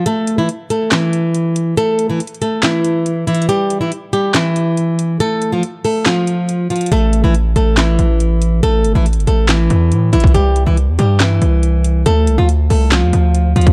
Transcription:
0.06 A3 A4, closed hi-hat
0.27 closed hi-hat
0.38 E3 E4
0.49 closed hi-hat
0.70 A3 A4, closed hi-hat
0.92 E3 E4, snare, clap, closed hi-hat
1.13 closed hi-hat
1.34 closed hi-hat
1.56 closed hi-hat
1.77 A3 A4, closed hi-hat
1.99 closed hi-hat
2.10 E3 E4
2.20 closed hi-hat
2.27 closed hi-hat
2.34 closed hi-hat
2.42 A3 A4, closed hi-hat
2.63 E3 E4, snare, clap, closed hi-hat
2.85 closed hi-hat
3.06 closed hi-hat
3.27 E3 E4, closed hi-hat
3.35 closed hi-hat
3.42 closed hi-hat
3.49 G3 G4, closed hi-hat
3.70 closed hi-hat
3.81 E3 E4
3.92 closed hi-hat
4.13 G3 G4, closed hi-hat
4.34 E3 E4, snare, clap, closed hi-hat
4.56 closed hi-hat
4.77 closed hi-hat
4.99 closed hi-hat
5.20 A3 A4, closed hi-hat
5.42 closed hi-hat
5.52 F3 F4
5.63 closed hi-hat
5.84 A3 A4, open hi-hat
6.06 F3 F4, snare, clap, closed hi-hat
6.27 closed hi-hat
6.49 closed hi-hat
6.70 F3 F4, closed hi-hat
6.76 closed hi-hat
6.81 closed hi-hat
6.86 closed hi-hat
6.92 A1 A3 A4, closed hi-hat
7.13 closed hi-hat
7.24 A1 E3 E4
7.34 closed hi-hat
7.56 A1 A3 A4, closed hi-hat
7.77 E3 E4, snare, clap, closed hi-hat
7.99 A1, closed hi-hat
8.20 closed hi-hat
8.42 closed hi-hat
8.63 A1 A3 A4, closed hi-hat
8.84 G1, closed hi-hat
8.95 A1 E3 E4
9.06 closed hi-hat
9.13 G1, closed hi-hat
9.20 closed hi-hat
9.27 A1 A3 A4, closed hi-hat
9.49 E3 E4, snare, clap, closed hi-hat
9.70 E2, closed hi-hat
9.92 A2, closed hi-hat
10.13 A1 E3 E4, closed hi-hat
10.20 kick, closed hi-hat
10.27 closed hi-hat
10.34 C2 G3 G4, closed hi-hat
10.56 closed hi-hat
10.66 C2 E3 E4
10.77 closed hi-hat
10.88 E2
10.99 G2 G3 G4, closed hi-hat
11.20 E3 E4, snare, clap, closed hi-hat
11.42 C2, closed hi-hat
11.63 closed hi-hat
11.84 closed hi-hat
12.06 D2 A3 A4, closed hi-hat
12.27 C2, closed hi-hat
12.38 D2 F3 F4
12.49 closed hi-hat
12.70 C2 A3 A4, open hi-hat
12.92 F3 F4, snare, clap, closed hi-hat
13.02 E2
13.13 D2, closed hi-hat
13.35 closed hi-hat
13.56 D2 F3 F4, closed hi-hat
13.61 closed hi-hat
13.67 kick, closed hi-hat

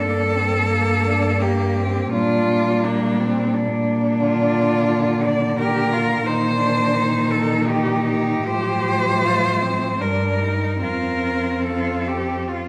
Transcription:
Already playing: G2 A#3 D4 A4
0.34 C4
0.70 A#3
1.06 D4
1.42 A#3 G4
1.78 C4
2.12 A#2 G3 D4 F4
2.84 A#3 D4
3.19 C4
3.53 D4
4.22 D3 F4
5.25 D5
5.58 G4 A#4
5.92 F4
6.25 A#2 D#3 D#4 C5
6.59 D4
6.95 D#4
7.31 A4
7.68 D#4 G4
8.07 G4
8.47 A2 F3 C5
9.24 F4
9.62 C4
9.99 G2 G3 D4 A#4
10.41 D#4
10.81 F2 C4 F4 A#4
11.66 F4 A4
12.07 G4
12.48 F4

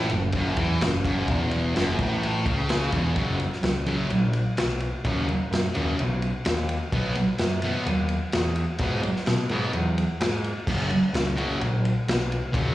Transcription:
0.10 F#1 F#2, ride
0.32 F#1 F#2, kick, ride
0.56 E2 E3, kick, ride
0.81 F#1 F#2, snare, ride
1.04 F#1 F#2, kick, ride
1.28 E1 E2, kick, ride
1.51 ride
1.76 F#1 F#2, snare, ride
1.99 A1 A2, kick, ride
2.23 ride
2.45 C#2 C#3, kick, ride
2.69 snare, ride
2.92 E1 E2, kick, ride
3.15 F#1 F#2 C#3 F#3, kick, ride
3.40 ride
3.53 snare
3.63 C#2, snare, ride
3.86 F#2 C#3 F#3, ride
4.10 A#1, ride
4.33 ride
4.57 B1, snare, ride
4.80 ride
5.04 D#2 F#2 C#3 F#3, kick, ride
5.29 ride
5.51 F#2, snare, ride
5.74 D#2 F#2 C#3 F#3, ride
5.99 B1, ride
6.22 ride
6.45 D#2, snare, ride
6.69 ride
6.92 B1 B2 F#3 B3, kick, ride
7.15 ride
7.38 F#2, snare, ride
7.62 B2 F#3 B3, ride
7.86 D#2, ride
8.09 ride
8.32 E2, snare, ride
8.56 ride
8.78 G#2 B2 F#3 B3, kick, ride
9.03 ride
9.16 snare
9.26 B2, snare, ride
9.49 G#2 B2 F#3 B3, ride
9.73 E2, ride
9.98 ride
10.20 G#2, snare, ride
10.44 ride
10.67 F#1 F#2 C#3 F#3, kick, crash
10.90 ride
11.13 C#2, snare, ride
11.36 F#2 C#3 F#3, ride
11.61 A#1, ride
11.85 ride
12.08 B1, snare, ride
12.32 ride
12.52 D#2 F#2 C#3 F#3, kick, ride

